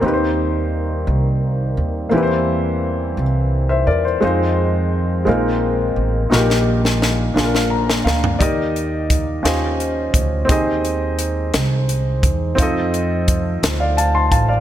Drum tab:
HH |------------|------------|------------|------------|
SD |------------|------------|------------|oo-oo-oo-oo-|
FT |------------|------------|------------|-----------o|
BD |------------|------------|------------|------------|

HH |x-x-x-x-x-x-|x-x-x-x-x-x-|x-x-x-x-x-x-|
SD |------o-----|------o-----|------o-----|
FT |------------|------------|------------|
BD |o---o-----o-|o---------o-|o---o-----o-|